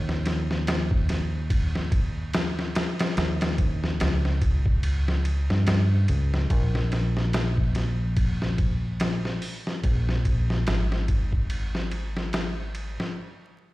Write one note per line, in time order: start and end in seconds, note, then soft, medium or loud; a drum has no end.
0.00 2.72 D#2 loud
0.09 snare soft
0.26 snare medium
0.26 ride medium
0.51 snare soft
0.67 snare loud
0.67 ride medium
0.91 kick loud
1.09 snare soft
1.09 ride medium
1.50 kick loud
1.50 ride medium
1.75 snare soft
1.92 kick loud
1.92 ride medium
2.33 snare loud
2.33 ride medium
2.59 snare soft
2.75 snare loud
2.75 ride medium
2.99 snare loud
2.99 ride medium
3.17 3.97 D#2 loud
3.17 snare loud
3.17 ride medium
3.41 snare loud
3.41 ride medium
3.58 kick medium
3.58 ride medium
3.84 snare soft
4.00 5.49 C#2 medium
4.00 snare loud
4.00 ride medium
4.25 snare soft
4.42 kick loud
4.42 ride medium
4.66 kick loud
4.83 ride medium
5.08 snare soft
5.25 ride medium
5.50 6.05 G2 medium
5.50 snare medium
5.67 snare loud
5.67 ride medium
6.08 6.46 C#2 medium
6.08 ride medium
6.34 snare medium
6.50 9.39 A#1 loud
6.50 kick loud
6.50 ride medium
6.75 snare soft
6.92 snare medium
6.92 ride medium
7.17 snare soft
7.33 snare loud
7.33 ride medium
7.57 kick medium
7.75 snare soft
7.75 ride medium
8.17 kick loud
8.17 ride medium
8.42 snare soft
8.58 kick medium
8.58 ride medium
9.00 snare loud
9.00 ride medium
9.25 snare soft
9.42 open hi-hat medium
9.67 snare soft
9.83 10.64 A#1 medium
9.83 kick loud
9.83 ride medium
10.09 snare soft
10.25 kick medium
10.25 ride medium
10.50 snare soft
10.67 12.95 G#1 medium
10.67 snare loud
10.67 ride medium
10.92 snare soft
11.08 kick medium
11.08 ride medium
11.33 kick medium
11.50 ride medium
11.75 snare soft
11.91 ride medium
12.17 snare soft
12.33 snare loud
12.33 ride medium
12.75 ride medium
13.00 snare medium